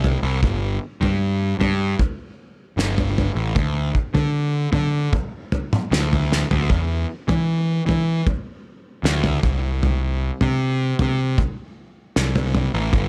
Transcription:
Already playing: C2
0.04 floor tom
0.23 C2
0.42 G1, kick, floor tom
1.01 G2, floor tom
1.59 G2, floor tom
1.99 kick, floor tom
2.77 G1, snare
2.98 floor tom
3.18 floor tom
3.35 A1
3.55 D2, kick, floor tom
3.95 kick
4.14 D3, floor tom
4.72 D3, floor tom, mid tom
5.13 kick, floor tom, mid tom
5.52 floor tom
5.73 mid tom
5.91 D2, snare
6.13 floor tom
6.32 snare
6.51 D2, floor tom
6.70 E2, kick, floor tom
7.28 E3, floor tom
7.86 E3, floor tom
8.27 kick, floor tom
9.03 D2, snare
9.24 floor tom
9.43 C2, kick, floor tom
9.83 floor tom
10.41 C3, floor tom
10.99 C3, floor tom
11.38 kick, floor tom
12.16 C2, snare
12.36 floor tom
12.55 floor tom
12.74 A1
12.93 G1, kick, floor tom

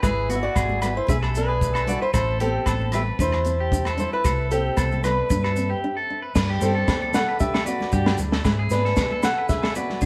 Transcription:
0.03 G#1 G#3 E4 G#4 B4 E5 G#5 B5, kick, cross-stick, low agogo, maracas
0.29 B3 F#4, closed hi-hat, high conga, maracas
0.35 E5
0.43 F#4 D5
0.55 G#1 B3 G#4, kick, cross-stick, low agogo, maracas
0.69 A3, high conga
0.81 B3 B4, cross-stick, closed hi-hat, low conga, low agogo, maracas
0.97 E4 C5
1.08 B1 D4 G#4 B4 E5, kick, high conga, maracas
1.22 A4, cross-stick, low agogo
1.34 C4 D4 B4, closed hi-hat, high conga, maracas
1.48 G#4
1.61 kick, maracas
1.74 A4, cross-stick, low agogo, maracas
1.87 D4 F#4 D5, closed hi-hat, low conga, maracas
2.02 E4 B4 C5
2.13 A1 A3 C4 E4 A4 C5 A5 B5, kick, cross-stick, low agogo, maracas
2.40 B3 C4 G4 A4, closed hi-hat, high conga
2.66 A1 B3 A4, kick, cross-stick, low agogo, maracas
2.80 E3, high conga
2.92 B3 G4 B4 E5, cross-stick, closed hi-hat, low conga, low agogo, maracas
3.19 E2 D4 E4 B4 C5, kick, high conga, maracas
3.32 muted clean electric guitar stroke, cross-stick, low agogo
3.45 C4, closed hi-hat, high conga, maracas
3.60 G4
3.72 D4, kick, maracas
3.85 A4, cross-stick, low agogo, maracas
3.97 D4 E4 C5, closed hi-hat, low conga, maracas
4.13 E4 B4
4.24 C2 A3 A4 E5, kick, cross-stick, low agogo, maracas
4.51 C4 G4 A4, muted nylon-string guitar stroke, closed hi-hat, high conga, maracas
4.77 C2 B3 A4, kick, cross-stick, low agogo, maracas
4.91 A3, high conga, low conga, maracas
5.03 B3 D4 B4, cross-stick, closed hi-hat, low conga, low agogo, maracas
5.29 G2 D4 B4, kick, high conga, maracas
5.44 A4, cross-stick, low agogo
5.56 C4, closed hi-hat, high conga, maracas
5.70 G4
5.84 D4
5.97 A4
6.10 D4
6.22 B4
6.35 G2 A3 B4 D5 A5 B5, kick, snare, crash, low agogo, maracas
6.50 G4
6.61 G2 B3 C4 A4, high conga, maracas
6.75 A4
6.88 B3, kick, snare, low agogo, maracas
7.01 A3 A4, high conga
7.13 B3 A4 F#5, snare, low conga, low agogo, maracas
7.29 B4
7.40 D4 G4 E5, kick, maracas
7.54 A4, snare, low agogo
7.66 C4 F#4 B4 D5, high conga, maracas
7.81 snare, low conga
7.92 G2 D4 G4, kick, maracas
8.06 snare, high conga, low agogo
8.18 D2 D4, low conga, maracas
8.32 A4, snare
8.44 G#2 G#3 E5 G#5 B5, muted clean electric guitar stroke, kick, snare, low agogo, maracas
8.59 G#4
8.70 G#2 B3 D4 B4, snare, high conga, maracas
8.85 A4, snare
8.96 B3, kick, snare, low agogo, maracas
9.11 A3 A4, high conga
9.23 B3 A4 F#5, snare, low conga, low agogo, maracas
9.38 B4
9.49 D4 G#4 E5, kick, snare, maracas
9.63 A4, snare, low agogo
9.75 C4 F#4 B4 D5, high conga, maracas
9.90 snare, low conga
10.01 G#2 D4 G#4, kick, maracas

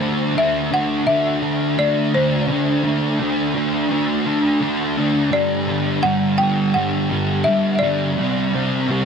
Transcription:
Already playing: D3 C5
0.00 A3 D4
0.35 D3 A3 D4 E5
0.71 A3 D4 F#5
1.06 D3 A3 D4 E5
1.42 A3 D4
1.78 D3 A3 D4 D5
2.14 A3 D4 C5
2.48 D3 A3 D4
2.83 A3 D4
3.19 D3 A3 D4
3.54 A3 D4
3.90 D3 A3 D4
4.26 A3 D4
4.60 D3 A3 D4
4.97 A3 D4
5.30 G2 D3 G3 D5
5.68 D3 G3
6.03 G2 D3 G3 F#5
6.38 G3 G5
6.42 D3
6.74 G2 D3 F#5
6.78 G3
7.10 D3 G3
7.44 G2 D3 E5
7.49 G3
7.75 D5 E5
7.82 D3 G3
8.17 C3 G3 C4
8.53 G3 C4
8.88 C3 G3 C4

